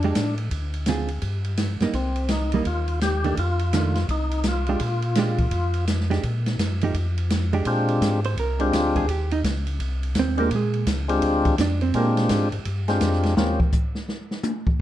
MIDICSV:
0, 0, Header, 1, 5, 480
1, 0, Start_track
1, 0, Tempo, 356930
1, 699, Time_signature, 4, 2, 24, 8
1, 19919, End_track
2, 0, Start_track
2, 0, Title_t, "Hollow-body jazz guitar"
2, 0, Program_c, 0, 26
2, 59, Note_on_c, 0, 56, 63
2, 67, Note_on_c, 0, 62, 65
2, 69, Note_on_c, 0, 67, 71
2, 209, Note_off_c, 0, 56, 0
2, 213, Note_off_c, 0, 62, 0
2, 214, Note_off_c, 0, 67, 0
2, 1188, Note_on_c, 0, 50, 53
2, 1192, Note_on_c, 0, 60, 51
2, 1202, Note_on_c, 0, 65, 60
2, 1204, Note_on_c, 0, 68, 58
2, 1457, Note_off_c, 0, 50, 0
2, 1460, Note_off_c, 0, 60, 0
2, 1464, Note_off_c, 0, 65, 0
2, 1465, Note_off_c, 0, 68, 0
2, 2450, Note_on_c, 0, 55, 58
2, 2455, Note_on_c, 0, 58, 59
2, 2470, Note_on_c, 0, 63, 69
2, 2603, Note_off_c, 0, 55, 0
2, 2606, Note_off_c, 0, 58, 0
2, 2613, Note_off_c, 0, 63, 0
2, 3416, Note_on_c, 0, 55, 70
2, 3423, Note_on_c, 0, 58, 66
2, 3435, Note_on_c, 0, 63, 69
2, 3566, Note_off_c, 0, 55, 0
2, 3570, Note_off_c, 0, 58, 0
2, 3575, Note_off_c, 0, 63, 0
2, 4363, Note_on_c, 0, 51, 48
2, 4376, Note_on_c, 0, 57, 54
2, 4380, Note_on_c, 0, 62, 59
2, 4519, Note_off_c, 0, 51, 0
2, 4526, Note_off_c, 0, 57, 0
2, 4528, Note_off_c, 0, 62, 0
2, 5024, Note_on_c, 0, 51, 49
2, 5036, Note_on_c, 0, 57, 55
2, 5040, Note_on_c, 0, 62, 56
2, 5295, Note_off_c, 0, 51, 0
2, 5301, Note_off_c, 0, 57, 0
2, 5303, Note_off_c, 0, 62, 0
2, 6307, Note_on_c, 0, 56, 55
2, 6311, Note_on_c, 0, 62, 61
2, 6317, Note_on_c, 0, 67, 65
2, 6452, Note_off_c, 0, 56, 0
2, 6454, Note_off_c, 0, 62, 0
2, 6457, Note_off_c, 0, 67, 0
2, 6961, Note_on_c, 0, 56, 59
2, 6971, Note_on_c, 0, 62, 60
2, 6980, Note_on_c, 0, 67, 64
2, 7224, Note_off_c, 0, 56, 0
2, 7229, Note_off_c, 0, 62, 0
2, 7234, Note_off_c, 0, 67, 0
2, 8208, Note_on_c, 0, 56, 62
2, 8220, Note_on_c, 0, 62, 68
2, 8222, Note_on_c, 0, 67, 68
2, 8364, Note_off_c, 0, 56, 0
2, 8369, Note_off_c, 0, 62, 0
2, 8370, Note_off_c, 0, 67, 0
2, 9186, Note_on_c, 0, 53, 58
2, 9186, Note_on_c, 0, 57, 65
2, 9194, Note_on_c, 0, 63, 74
2, 9204, Note_on_c, 0, 67, 76
2, 9333, Note_off_c, 0, 53, 0
2, 9333, Note_off_c, 0, 57, 0
2, 9337, Note_off_c, 0, 63, 0
2, 9342, Note_off_c, 0, 67, 0
2, 10128, Note_on_c, 0, 56, 59
2, 10139, Note_on_c, 0, 62, 65
2, 10146, Note_on_c, 0, 67, 75
2, 10285, Note_off_c, 0, 56, 0
2, 10290, Note_off_c, 0, 62, 0
2, 10293, Note_off_c, 0, 67, 0
2, 11102, Note_on_c, 0, 72, 78
2, 11264, Note_off_c, 0, 72, 0
2, 11291, Note_on_c, 0, 70, 63
2, 11573, Note_off_c, 0, 70, 0
2, 11574, Note_on_c, 0, 62, 49
2, 11769, Note_off_c, 0, 62, 0
2, 11769, Note_on_c, 0, 65, 76
2, 12052, Note_off_c, 0, 65, 0
2, 12056, Note_on_c, 0, 68, 80
2, 12221, Note_off_c, 0, 68, 0
2, 12244, Note_on_c, 0, 67, 69
2, 12529, Note_off_c, 0, 67, 0
2, 12537, Note_on_c, 0, 63, 88
2, 12639, Note_off_c, 0, 63, 0
2, 13707, Note_on_c, 0, 60, 63
2, 13711, Note_on_c, 0, 72, 68
2, 13979, Note_off_c, 0, 72, 0
2, 13982, Note_off_c, 0, 60, 0
2, 13984, Note_on_c, 0, 70, 79
2, 13992, Note_on_c, 0, 58, 60
2, 14145, Note_off_c, 0, 70, 0
2, 14149, Note_off_c, 0, 58, 0
2, 14181, Note_on_c, 0, 56, 59
2, 14193, Note_on_c, 0, 68, 59
2, 14610, Note_off_c, 0, 56, 0
2, 14612, Note_off_c, 0, 68, 0
2, 15611, Note_on_c, 0, 62, 71
2, 15618, Note_on_c, 0, 74, 70
2, 15892, Note_off_c, 0, 62, 0
2, 15893, Note_off_c, 0, 74, 0
2, 15894, Note_on_c, 0, 72, 78
2, 15903, Note_on_c, 0, 60, 67
2, 16059, Note_off_c, 0, 72, 0
2, 16064, Note_off_c, 0, 60, 0
2, 16095, Note_on_c, 0, 58, 55
2, 16102, Note_on_c, 0, 70, 58
2, 16525, Note_off_c, 0, 58, 0
2, 16525, Note_off_c, 0, 70, 0
2, 19919, End_track
3, 0, Start_track
3, 0, Title_t, "Tonewheel organ"
3, 0, Program_c, 1, 16
3, 0, Note_on_c, 1, 62, 71
3, 471, Note_off_c, 1, 62, 0
3, 2621, Note_on_c, 1, 60, 80
3, 3090, Note_on_c, 1, 63, 84
3, 3113, Note_off_c, 1, 60, 0
3, 3539, Note_off_c, 1, 63, 0
3, 3591, Note_on_c, 1, 65, 81
3, 4031, Note_off_c, 1, 65, 0
3, 4065, Note_on_c, 1, 67, 100
3, 4507, Note_off_c, 1, 67, 0
3, 4563, Note_on_c, 1, 65, 96
3, 5026, Note_off_c, 1, 65, 0
3, 5042, Note_on_c, 1, 65, 84
3, 5477, Note_off_c, 1, 65, 0
3, 5524, Note_on_c, 1, 63, 81
3, 6005, Note_off_c, 1, 63, 0
3, 6026, Note_on_c, 1, 65, 87
3, 7870, Note_off_c, 1, 65, 0
3, 10310, Note_on_c, 1, 60, 55
3, 10316, Note_on_c, 1, 56, 57
3, 10319, Note_on_c, 1, 62, 56
3, 10320, Note_on_c, 1, 65, 59
3, 10322, Note_on_c, 1, 67, 60
3, 11030, Note_off_c, 1, 60, 0
3, 11033, Note_off_c, 1, 56, 0
3, 11034, Note_off_c, 1, 62, 0
3, 11035, Note_off_c, 1, 65, 0
3, 11036, Note_off_c, 1, 67, 0
3, 11557, Note_on_c, 1, 56, 62
3, 11566, Note_on_c, 1, 60, 56
3, 11572, Note_on_c, 1, 62, 57
3, 11576, Note_on_c, 1, 65, 58
3, 11581, Note_on_c, 1, 67, 66
3, 12182, Note_off_c, 1, 56, 0
3, 12186, Note_off_c, 1, 60, 0
3, 12189, Note_off_c, 1, 62, 0
3, 12191, Note_off_c, 1, 65, 0
3, 12194, Note_off_c, 1, 67, 0
3, 13952, Note_on_c, 1, 56, 69
3, 13952, Note_on_c, 1, 60, 64
3, 13954, Note_on_c, 1, 62, 58
3, 13962, Note_on_c, 1, 65, 65
3, 13971, Note_on_c, 1, 67, 76
3, 14117, Note_off_c, 1, 56, 0
3, 14117, Note_off_c, 1, 60, 0
3, 14117, Note_off_c, 1, 62, 0
3, 14121, Note_off_c, 1, 65, 0
3, 14126, Note_off_c, 1, 67, 0
3, 14906, Note_on_c, 1, 56, 71
3, 14909, Note_on_c, 1, 60, 66
3, 14922, Note_on_c, 1, 62, 63
3, 14928, Note_on_c, 1, 67, 78
3, 14933, Note_on_c, 1, 65, 62
3, 15536, Note_off_c, 1, 56, 0
3, 15537, Note_off_c, 1, 60, 0
3, 15543, Note_off_c, 1, 62, 0
3, 15547, Note_off_c, 1, 67, 0
3, 15549, Note_off_c, 1, 65, 0
3, 16063, Note_on_c, 1, 56, 62
3, 16069, Note_on_c, 1, 60, 65
3, 16076, Note_on_c, 1, 62, 59
3, 16080, Note_on_c, 1, 65, 61
3, 16086, Note_on_c, 1, 67, 76
3, 16785, Note_off_c, 1, 56, 0
3, 16788, Note_off_c, 1, 60, 0
3, 16792, Note_off_c, 1, 62, 0
3, 16794, Note_off_c, 1, 65, 0
3, 16797, Note_off_c, 1, 67, 0
3, 17324, Note_on_c, 1, 56, 59
3, 17328, Note_on_c, 1, 60, 57
3, 17336, Note_on_c, 1, 62, 55
3, 17341, Note_on_c, 1, 65, 56
3, 17346, Note_on_c, 1, 67, 61
3, 17943, Note_off_c, 1, 56, 0
3, 17945, Note_off_c, 1, 60, 0
3, 17950, Note_off_c, 1, 62, 0
3, 17952, Note_off_c, 1, 65, 0
3, 17954, Note_off_c, 1, 67, 0
3, 17977, Note_on_c, 1, 58, 55
3, 17978, Note_on_c, 1, 60, 49
3, 17986, Note_on_c, 1, 61, 54
3, 17990, Note_on_c, 1, 65, 55
3, 17990, Note_on_c, 1, 67, 60
3, 18283, Note_off_c, 1, 58, 0
3, 18283, Note_off_c, 1, 60, 0
3, 18287, Note_off_c, 1, 61, 0
3, 18289, Note_off_c, 1, 65, 0
3, 18289, Note_off_c, 1, 67, 0
3, 19919, End_track
4, 0, Start_track
4, 0, Title_t, "Tonewheel organ"
4, 0, Program_c, 2, 16
4, 0, Note_on_c, 2, 41, 83
4, 180, Note_off_c, 2, 41, 0
4, 224, Note_on_c, 2, 45, 68
4, 667, Note_off_c, 2, 45, 0
4, 689, Note_on_c, 2, 38, 83
4, 1604, Note_off_c, 2, 38, 0
4, 1641, Note_on_c, 2, 43, 76
4, 2380, Note_off_c, 2, 43, 0
4, 2424, Note_on_c, 2, 43, 40
4, 2516, Note_off_c, 2, 43, 0
4, 2605, Note_on_c, 2, 36, 81
4, 3522, Note_off_c, 2, 36, 0
4, 3565, Note_on_c, 2, 39, 83
4, 4482, Note_off_c, 2, 39, 0
4, 4540, Note_on_c, 2, 41, 84
4, 5450, Note_off_c, 2, 41, 0
4, 5491, Note_on_c, 2, 36, 86
4, 6406, Note_off_c, 2, 36, 0
4, 6462, Note_on_c, 2, 46, 84
4, 7373, Note_off_c, 2, 46, 0
4, 7413, Note_on_c, 2, 41, 78
4, 8328, Note_off_c, 2, 41, 0
4, 8378, Note_on_c, 2, 46, 91
4, 8825, Note_off_c, 2, 46, 0
4, 8854, Note_on_c, 2, 42, 70
4, 9303, Note_off_c, 2, 42, 0
4, 9329, Note_on_c, 2, 41, 82
4, 10247, Note_off_c, 2, 41, 0
4, 10295, Note_on_c, 2, 46, 79
4, 10764, Note_off_c, 2, 46, 0
4, 10771, Note_on_c, 2, 44, 84
4, 11241, Note_off_c, 2, 44, 0
4, 11260, Note_on_c, 2, 36, 87
4, 11726, Note_off_c, 2, 36, 0
4, 11741, Note_on_c, 2, 38, 87
4, 12207, Note_off_c, 2, 38, 0
4, 12211, Note_on_c, 2, 39, 78
4, 12682, Note_off_c, 2, 39, 0
4, 12695, Note_on_c, 2, 37, 88
4, 13164, Note_off_c, 2, 37, 0
4, 13169, Note_on_c, 2, 36, 81
4, 13641, Note_off_c, 2, 36, 0
4, 13654, Note_on_c, 2, 39, 86
4, 14123, Note_off_c, 2, 39, 0
4, 14127, Note_on_c, 2, 46, 82
4, 14599, Note_off_c, 2, 46, 0
4, 14613, Note_on_c, 2, 37, 84
4, 15082, Note_off_c, 2, 37, 0
4, 15093, Note_on_c, 2, 38, 88
4, 15562, Note_off_c, 2, 38, 0
4, 15569, Note_on_c, 2, 41, 86
4, 16040, Note_off_c, 2, 41, 0
4, 16055, Note_on_c, 2, 46, 88
4, 16523, Note_off_c, 2, 46, 0
4, 16540, Note_on_c, 2, 44, 81
4, 16823, Note_off_c, 2, 44, 0
4, 16848, Note_on_c, 2, 44, 36
4, 16934, Note_off_c, 2, 44, 0
4, 17023, Note_on_c, 2, 43, 79
4, 17486, Note_off_c, 2, 43, 0
4, 17494, Note_on_c, 2, 41, 88
4, 17962, Note_off_c, 2, 41, 0
4, 17981, Note_on_c, 2, 39, 80
4, 18276, Note_off_c, 2, 39, 0
4, 19919, End_track
5, 0, Start_track
5, 0, Title_t, "Drums"
5, 33, Note_on_c, 9, 51, 46
5, 168, Note_off_c, 9, 51, 0
5, 203, Note_on_c, 9, 44, 59
5, 203, Note_on_c, 9, 51, 71
5, 208, Note_on_c, 9, 38, 70
5, 337, Note_off_c, 9, 44, 0
5, 337, Note_off_c, 9, 51, 0
5, 343, Note_off_c, 9, 38, 0
5, 505, Note_on_c, 9, 51, 41
5, 640, Note_off_c, 9, 51, 0
5, 686, Note_on_c, 9, 51, 56
5, 690, Note_on_c, 9, 36, 33
5, 820, Note_off_c, 9, 51, 0
5, 824, Note_off_c, 9, 36, 0
5, 989, Note_on_c, 9, 51, 44
5, 1123, Note_off_c, 9, 51, 0
5, 1155, Note_on_c, 9, 44, 63
5, 1155, Note_on_c, 9, 51, 64
5, 1160, Note_on_c, 9, 38, 66
5, 1289, Note_off_c, 9, 44, 0
5, 1289, Note_off_c, 9, 51, 0
5, 1295, Note_off_c, 9, 38, 0
5, 1457, Note_on_c, 9, 51, 46
5, 1592, Note_off_c, 9, 51, 0
5, 1635, Note_on_c, 9, 51, 58
5, 1644, Note_on_c, 9, 36, 30
5, 1769, Note_off_c, 9, 51, 0
5, 1778, Note_off_c, 9, 36, 0
5, 1943, Note_on_c, 9, 51, 44
5, 2077, Note_off_c, 9, 51, 0
5, 2116, Note_on_c, 9, 44, 56
5, 2116, Note_on_c, 9, 51, 69
5, 2121, Note_on_c, 9, 38, 68
5, 2251, Note_off_c, 9, 44, 0
5, 2251, Note_off_c, 9, 51, 0
5, 2256, Note_off_c, 9, 38, 0
5, 2424, Note_on_c, 9, 51, 40
5, 2430, Note_on_c, 9, 38, 51
5, 2559, Note_off_c, 9, 51, 0
5, 2564, Note_off_c, 9, 38, 0
5, 2600, Note_on_c, 9, 51, 60
5, 2605, Note_on_c, 9, 36, 31
5, 2735, Note_off_c, 9, 51, 0
5, 2739, Note_off_c, 9, 36, 0
5, 2899, Note_on_c, 9, 51, 45
5, 3033, Note_off_c, 9, 51, 0
5, 3072, Note_on_c, 9, 44, 57
5, 3072, Note_on_c, 9, 51, 64
5, 3078, Note_on_c, 9, 38, 68
5, 3207, Note_off_c, 9, 44, 0
5, 3207, Note_off_c, 9, 51, 0
5, 3212, Note_off_c, 9, 38, 0
5, 3385, Note_on_c, 9, 51, 48
5, 3520, Note_off_c, 9, 51, 0
5, 3563, Note_on_c, 9, 51, 57
5, 3568, Note_on_c, 9, 36, 32
5, 3698, Note_off_c, 9, 51, 0
5, 3702, Note_off_c, 9, 36, 0
5, 3867, Note_on_c, 9, 51, 43
5, 4002, Note_off_c, 9, 51, 0
5, 4051, Note_on_c, 9, 44, 57
5, 4051, Note_on_c, 9, 51, 60
5, 4057, Note_on_c, 9, 38, 65
5, 4186, Note_off_c, 9, 44, 0
5, 4186, Note_off_c, 9, 51, 0
5, 4191, Note_off_c, 9, 38, 0
5, 4359, Note_on_c, 9, 51, 40
5, 4494, Note_off_c, 9, 51, 0
5, 4535, Note_on_c, 9, 51, 58
5, 4537, Note_on_c, 9, 36, 31
5, 4669, Note_off_c, 9, 51, 0
5, 4671, Note_off_c, 9, 36, 0
5, 4831, Note_on_c, 9, 51, 46
5, 4966, Note_off_c, 9, 51, 0
5, 5013, Note_on_c, 9, 44, 62
5, 5013, Note_on_c, 9, 51, 64
5, 5019, Note_on_c, 9, 38, 68
5, 5148, Note_off_c, 9, 44, 0
5, 5148, Note_off_c, 9, 51, 0
5, 5153, Note_off_c, 9, 38, 0
5, 5317, Note_on_c, 9, 51, 49
5, 5322, Note_on_c, 9, 38, 41
5, 5451, Note_off_c, 9, 51, 0
5, 5457, Note_off_c, 9, 38, 0
5, 5497, Note_on_c, 9, 51, 54
5, 5499, Note_on_c, 9, 36, 35
5, 5632, Note_off_c, 9, 51, 0
5, 5634, Note_off_c, 9, 36, 0
5, 5801, Note_on_c, 9, 51, 47
5, 5935, Note_off_c, 9, 51, 0
5, 5964, Note_on_c, 9, 44, 59
5, 5964, Note_on_c, 9, 51, 65
5, 5970, Note_on_c, 9, 38, 66
5, 6099, Note_off_c, 9, 44, 0
5, 6099, Note_off_c, 9, 51, 0
5, 6104, Note_off_c, 9, 38, 0
5, 6273, Note_on_c, 9, 51, 39
5, 6407, Note_off_c, 9, 51, 0
5, 6449, Note_on_c, 9, 51, 62
5, 6457, Note_on_c, 9, 36, 30
5, 6583, Note_off_c, 9, 51, 0
5, 6592, Note_off_c, 9, 36, 0
5, 6753, Note_on_c, 9, 51, 45
5, 6888, Note_off_c, 9, 51, 0
5, 6930, Note_on_c, 9, 44, 59
5, 6930, Note_on_c, 9, 51, 66
5, 6935, Note_on_c, 9, 38, 66
5, 7064, Note_off_c, 9, 44, 0
5, 7064, Note_off_c, 9, 51, 0
5, 7070, Note_off_c, 9, 38, 0
5, 7239, Note_on_c, 9, 51, 44
5, 7244, Note_on_c, 9, 36, 56
5, 7373, Note_off_c, 9, 51, 0
5, 7378, Note_off_c, 9, 36, 0
5, 7411, Note_on_c, 9, 51, 57
5, 7419, Note_on_c, 9, 36, 31
5, 7545, Note_off_c, 9, 51, 0
5, 7554, Note_off_c, 9, 36, 0
5, 7712, Note_on_c, 9, 51, 45
5, 7847, Note_off_c, 9, 51, 0
5, 7899, Note_on_c, 9, 44, 59
5, 7899, Note_on_c, 9, 51, 67
5, 7905, Note_on_c, 9, 38, 63
5, 8034, Note_off_c, 9, 44, 0
5, 8034, Note_off_c, 9, 51, 0
5, 8039, Note_off_c, 9, 38, 0
5, 8073, Note_on_c, 9, 38, 29
5, 8207, Note_off_c, 9, 38, 0
5, 8215, Note_on_c, 9, 51, 40
5, 8230, Note_on_c, 9, 38, 40
5, 8350, Note_off_c, 9, 51, 0
5, 8364, Note_off_c, 9, 38, 0
5, 8382, Note_on_c, 9, 51, 54
5, 8383, Note_on_c, 9, 36, 33
5, 8516, Note_off_c, 9, 51, 0
5, 8517, Note_off_c, 9, 36, 0
5, 8688, Note_on_c, 9, 51, 46
5, 8694, Note_on_c, 9, 38, 49
5, 8823, Note_off_c, 9, 51, 0
5, 8828, Note_off_c, 9, 38, 0
5, 8864, Note_on_c, 9, 44, 55
5, 8864, Note_on_c, 9, 51, 68
5, 8870, Note_on_c, 9, 38, 68
5, 8999, Note_off_c, 9, 44, 0
5, 8999, Note_off_c, 9, 51, 0
5, 9004, Note_off_c, 9, 38, 0
5, 9162, Note_on_c, 9, 51, 45
5, 9297, Note_off_c, 9, 51, 0
5, 9338, Note_on_c, 9, 36, 31
5, 9338, Note_on_c, 9, 51, 55
5, 9472, Note_off_c, 9, 51, 0
5, 9473, Note_off_c, 9, 36, 0
5, 9649, Note_on_c, 9, 51, 47
5, 9784, Note_off_c, 9, 51, 0
5, 9821, Note_on_c, 9, 44, 57
5, 9821, Note_on_c, 9, 51, 66
5, 9826, Note_on_c, 9, 38, 70
5, 9955, Note_off_c, 9, 44, 0
5, 9955, Note_off_c, 9, 51, 0
5, 9961, Note_off_c, 9, 38, 0
5, 10125, Note_on_c, 9, 51, 37
5, 10260, Note_off_c, 9, 51, 0
5, 10288, Note_on_c, 9, 51, 59
5, 10293, Note_on_c, 9, 36, 20
5, 10423, Note_off_c, 9, 51, 0
5, 10428, Note_off_c, 9, 36, 0
5, 10603, Note_on_c, 9, 51, 45
5, 10737, Note_off_c, 9, 51, 0
5, 10779, Note_on_c, 9, 36, 22
5, 10781, Note_on_c, 9, 44, 58
5, 10781, Note_on_c, 9, 51, 64
5, 10787, Note_on_c, 9, 38, 64
5, 10913, Note_off_c, 9, 36, 0
5, 10916, Note_off_c, 9, 44, 0
5, 10916, Note_off_c, 9, 51, 0
5, 10921, Note_off_c, 9, 38, 0
5, 11086, Note_on_c, 9, 51, 47
5, 11220, Note_off_c, 9, 51, 0
5, 11259, Note_on_c, 9, 36, 19
5, 11262, Note_on_c, 9, 51, 52
5, 11394, Note_off_c, 9, 36, 0
5, 11396, Note_off_c, 9, 51, 0
5, 11560, Note_on_c, 9, 51, 45
5, 11694, Note_off_c, 9, 51, 0
5, 11740, Note_on_c, 9, 36, 20
5, 11743, Note_on_c, 9, 44, 58
5, 11743, Note_on_c, 9, 51, 65
5, 11748, Note_on_c, 9, 38, 65
5, 11875, Note_off_c, 9, 36, 0
5, 11877, Note_off_c, 9, 44, 0
5, 11877, Note_off_c, 9, 51, 0
5, 11883, Note_off_c, 9, 38, 0
5, 12044, Note_on_c, 9, 51, 42
5, 12045, Note_on_c, 9, 36, 41
5, 12179, Note_off_c, 9, 51, 0
5, 12180, Note_off_c, 9, 36, 0
5, 12218, Note_on_c, 9, 51, 60
5, 12220, Note_on_c, 9, 36, 22
5, 12352, Note_off_c, 9, 51, 0
5, 12355, Note_off_c, 9, 36, 0
5, 12523, Note_on_c, 9, 51, 45
5, 12658, Note_off_c, 9, 51, 0
5, 12698, Note_on_c, 9, 44, 51
5, 12698, Note_on_c, 9, 51, 63
5, 12699, Note_on_c, 9, 36, 22
5, 12704, Note_on_c, 9, 38, 63
5, 12833, Note_off_c, 9, 44, 0
5, 12833, Note_off_c, 9, 51, 0
5, 12834, Note_off_c, 9, 36, 0
5, 12838, Note_off_c, 9, 38, 0
5, 12998, Note_on_c, 9, 51, 45
5, 13133, Note_off_c, 9, 51, 0
5, 13176, Note_on_c, 9, 51, 56
5, 13178, Note_on_c, 9, 36, 22
5, 13311, Note_off_c, 9, 51, 0
5, 13312, Note_off_c, 9, 36, 0
5, 13487, Note_on_c, 9, 51, 44
5, 13622, Note_off_c, 9, 51, 0
5, 13648, Note_on_c, 9, 44, 65
5, 13648, Note_on_c, 9, 51, 67
5, 13653, Note_on_c, 9, 38, 62
5, 13657, Note_on_c, 9, 36, 22
5, 13782, Note_off_c, 9, 44, 0
5, 13782, Note_off_c, 9, 51, 0
5, 13788, Note_off_c, 9, 38, 0
5, 13791, Note_off_c, 9, 36, 0
5, 13955, Note_on_c, 9, 51, 39
5, 14089, Note_off_c, 9, 51, 0
5, 14130, Note_on_c, 9, 51, 59
5, 14133, Note_on_c, 9, 36, 22
5, 14264, Note_off_c, 9, 51, 0
5, 14268, Note_off_c, 9, 36, 0
5, 14436, Note_on_c, 9, 51, 42
5, 14571, Note_off_c, 9, 51, 0
5, 14612, Note_on_c, 9, 44, 61
5, 14612, Note_on_c, 9, 51, 62
5, 14616, Note_on_c, 9, 36, 21
5, 14617, Note_on_c, 9, 38, 67
5, 14747, Note_off_c, 9, 44, 0
5, 14747, Note_off_c, 9, 51, 0
5, 14751, Note_off_c, 9, 36, 0
5, 14752, Note_off_c, 9, 38, 0
5, 14916, Note_on_c, 9, 51, 49
5, 15050, Note_off_c, 9, 51, 0
5, 15086, Note_on_c, 9, 51, 59
5, 15095, Note_on_c, 9, 36, 19
5, 15221, Note_off_c, 9, 51, 0
5, 15229, Note_off_c, 9, 36, 0
5, 15397, Note_on_c, 9, 51, 45
5, 15402, Note_on_c, 9, 36, 59
5, 15532, Note_off_c, 9, 51, 0
5, 15536, Note_off_c, 9, 36, 0
5, 15574, Note_on_c, 9, 44, 57
5, 15574, Note_on_c, 9, 51, 65
5, 15579, Note_on_c, 9, 38, 65
5, 15708, Note_off_c, 9, 44, 0
5, 15708, Note_off_c, 9, 51, 0
5, 15714, Note_off_c, 9, 38, 0
5, 15881, Note_on_c, 9, 51, 39
5, 16015, Note_off_c, 9, 51, 0
5, 16053, Note_on_c, 9, 51, 57
5, 16059, Note_on_c, 9, 36, 19
5, 16187, Note_off_c, 9, 51, 0
5, 16193, Note_off_c, 9, 36, 0
5, 16367, Note_on_c, 9, 51, 50
5, 16372, Note_on_c, 9, 38, 40
5, 16501, Note_off_c, 9, 51, 0
5, 16506, Note_off_c, 9, 38, 0
5, 16529, Note_on_c, 9, 44, 57
5, 16529, Note_on_c, 9, 51, 68
5, 16534, Note_on_c, 9, 38, 66
5, 16540, Note_on_c, 9, 36, 28
5, 16663, Note_off_c, 9, 44, 0
5, 16663, Note_off_c, 9, 51, 0
5, 16668, Note_off_c, 9, 38, 0
5, 16674, Note_off_c, 9, 36, 0
5, 16837, Note_on_c, 9, 51, 47
5, 16971, Note_off_c, 9, 51, 0
5, 17014, Note_on_c, 9, 51, 55
5, 17022, Note_on_c, 9, 36, 18
5, 17149, Note_off_c, 9, 51, 0
5, 17157, Note_off_c, 9, 36, 0
5, 17319, Note_on_c, 9, 51, 45
5, 17324, Note_on_c, 9, 38, 46
5, 17454, Note_off_c, 9, 51, 0
5, 17459, Note_off_c, 9, 38, 0
5, 17491, Note_on_c, 9, 44, 60
5, 17491, Note_on_c, 9, 51, 64
5, 17496, Note_on_c, 9, 38, 66
5, 17501, Note_on_c, 9, 36, 25
5, 17625, Note_off_c, 9, 44, 0
5, 17625, Note_off_c, 9, 51, 0
5, 17630, Note_off_c, 9, 38, 0
5, 17636, Note_off_c, 9, 36, 0
5, 17655, Note_on_c, 9, 38, 29
5, 17789, Note_off_c, 9, 38, 0
5, 17796, Note_on_c, 9, 51, 43
5, 17816, Note_on_c, 9, 38, 42
5, 17931, Note_off_c, 9, 51, 0
5, 17950, Note_off_c, 9, 38, 0
5, 17981, Note_on_c, 9, 38, 95
5, 18115, Note_off_c, 9, 38, 0
5, 18287, Note_on_c, 9, 36, 76
5, 18421, Note_off_c, 9, 36, 0
5, 18455, Note_on_c, 9, 44, 55
5, 18461, Note_on_c, 9, 36, 74
5, 18590, Note_off_c, 9, 44, 0
5, 18596, Note_off_c, 9, 36, 0
5, 18761, Note_on_c, 9, 38, 36
5, 18896, Note_off_c, 9, 38, 0
5, 18943, Note_on_c, 9, 38, 44
5, 19077, Note_off_c, 9, 38, 0
5, 19244, Note_on_c, 9, 38, 42
5, 19379, Note_off_c, 9, 38, 0
5, 19406, Note_on_c, 9, 44, 58
5, 19412, Note_on_c, 9, 48, 86
5, 19541, Note_off_c, 9, 44, 0
5, 19546, Note_off_c, 9, 48, 0
5, 19724, Note_on_c, 9, 36, 67
5, 19859, Note_off_c, 9, 36, 0
5, 19919, End_track
0, 0, End_of_file